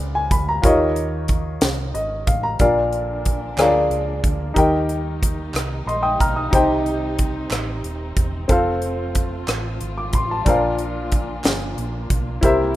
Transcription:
Already playing: A#2 F4 G#4 A#4 B4 D5
0.00 C#2
0.15 G#5
0.31 D2 B5, kick, closed hi-hat
0.49 A#5
0.62 D#2 D#3 F4 G4 A#4 C#5 D#5, kick, closed hi-hat
0.96 closed hi-hat
1.28 kick, closed hi-hat
1.61 C2, snare, closed hi-hat
1.93 G#1 D#5, closed hi-hat
2.27 A1 F5, kick, closed hi-hat
2.43 A#5
2.58 A#1 A#2 D3 F3 A#3 D4 F4 A#4 D5 F5, kick, closed hi-hat
2.93 closed hi-hat
3.25 kick, closed hi-hat
3.57 D2 G#3 D4 F4 G#4 A#4 C#5 F5, cross-stick, clap, closed hi-hat
3.66 D5
3.90 C#2, closed hi-hat
4.24 D2, kick, closed hi-hat
4.54 D#2 D#3 G3 D#4 G4 A#4 D#5, kick, closed hi-hat
4.58 G5
4.89 closed hi-hat
5.23 kick, closed hi-hat
5.54 C2, cross-stick, clap, closed hi-hat
5.86 A#1 D#5 C6, closed hi-hat
6.03 G5 D#6
6.20 B1 A#5 F6, kick, closed hi-hat
6.36 D#6
6.51 C2 C3 C4 D#4 G4 C5 D#5, kick, closed hi-hat
6.55 G5
6.86 closed hi-hat
7.19 kick, closed hi-hat
7.51 A1, cross-stick, clap, closed hi-hat
7.84 D#1, closed hi-hat
8.16 E1, kick, closed hi-hat
8.48 F1 F3 A3 C4 F4 A4 C5, kick, closed hi-hat
8.52 F5
8.82 closed hi-hat
9.15 kick, closed hi-hat
9.48 A1, cross-stick, clap, closed hi-hat
9.81 G#1, closed hi-hat
9.98 D6
10.13 A1 C6, kick, closed hi-hat
10.31 A5
10.45 A#1 A#2 A#3 D4 F4 A#4 C5, kick, closed hi-hat
10.49 F5
10.55 D5
10.78 closed hi-hat
11.12 kick, closed hi-hat
11.44 G1, snare, clap, closed hi-hat
11.77 A#1, closed hi-hat
12.10 B1, kick, closed hi-hat
12.41 C2 C3 G3 C4 E4 G4 A#4 C5 E5, kick, closed hi-hat

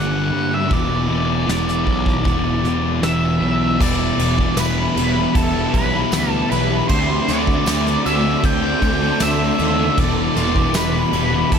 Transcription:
Already playing: G1 G2 D3 G3 A#3 D4 G4 F#5
0.31 G2 G3
0.35 D3
0.55 E5
0.69 E1 E2 B2 E3 B3 E4 G4, kick, open hi-hat
0.73 E3 D5
1.07 E1 B2 E3
1.47 E1 E2 B2 E3 B3 E4 G4, snare, open hi-hat
1.69 snare
1.86 B1 B2 E3, kick
2.06 kick
2.24 E1 E2 B2 E3 B3 E4 G4, kick, open hi-hat
2.63 E1 B2 E3 B3 E4 G4, snare
3.02 E1 E2 B2 E3 B3 E4 G4 E5, snare, open hi-hat
3.41 B1 B2 E3
3.79 E1 E2 B2 E3 G3 B3 E4 G4 D5 E5 B5 D6, kick, crash
3.99 G3 B3 E4
4.18 E1 E2 B2 E3 G3 B3 E4, ride
4.38 B2 E3 G3 B3 E4, kick
4.57 E1 E2 B2 E3 G3 B3 E4 B4, snare, ride, tambourine
4.95 E1 E2 B2 E3 G3 B3 E4, ride
5.00 E3
5.15 B2 E3
5.35 E1 A4, kick, ride
5.53 E3 G3 B3 E4
5.59 B2
5.72 B1 E2 B2 E3 G3 B3 E4 B4, kick, ride
5.77 E3
5.92 E3 G3 B3 E4
5.98 B2
6.11 D2 E2 B2 E3 G3 B3 E4, snare, ride, tambourine
6.16 E3
6.32 A4
6.50 B1 E2 B2 E3 G3 B3 E4 B4, ride
6.70 G3 B3 E4
6.88 D2 D3 A3 C4 F#4 A4 C5 A5 C6, kick, ride
6.92 A3 D4
7.08 A3 C4 F#4
7.28 D2 D3 A3 C4 F#4 D5, snare, ride
7.32 D4
7.47 A3 C4 D4 F#4, kick
7.65 D2 D3 A3 C4 D4 F#4, snare, ride, tambourine
7.87 snare
8.04 D2 D3 A3 C4 D4 F#4 E5, ride
8.24 A3 D4
8.44 D2 G5, kick, ride
8.62 A3 C4 D4 F#4
8.81 D2 D3 A3 C4 D4 F#4, kick, ride
9.01 A3 C4 D4 F#4
9.19 D2 D3 A3 C4 D4 F#4 E5, snare, ride, tambourine
9.58 D#2 D3 A3 C4 D4 F#4, ride
9.78 A3 C4 F#4
9.96 E1 E2 B2 E3 G3 B3 E4 G4 E5 B5, kick, ride
10.00 D5
10.16 G3 B3 E4
10.34 E1 E2 B2 E3 G3 B3 E4, snare, ride
10.54 E3 G3 B3 E4, kick
10.58 B2
10.73 E1 E2 B2 E3 G3 B3 E4 B4, snare, ride, tambourine
11.12 E1 E2 B2 E3 G3 B3 E4, ride
11.17 E3
11.31 B2 E3
11.52 E1 A4, kick, ride

